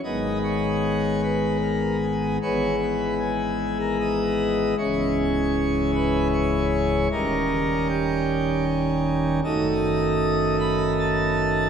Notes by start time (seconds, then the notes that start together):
0.04 G#1 G#2 D#3 G#3 B3 D#5
0.44 C#5
1.23 B4
1.63 A#4
2.03 G#4
2.42 G#1 G#2 E3 G#3 B3 C#5
2.81 B4
3.19 G#4
3.80 A#4
4.00 D#5
4.78 C#1 C#2 E3 G#3 C#4 C#5
5.95 B4
6.33 C#5
7.12 D#1 D#2 D#3 G3 C#4 A#4
7.89 G4
9.44 F#1 F#2 D#3 A3 D#4 D#5
10.60 B5
10.99 A5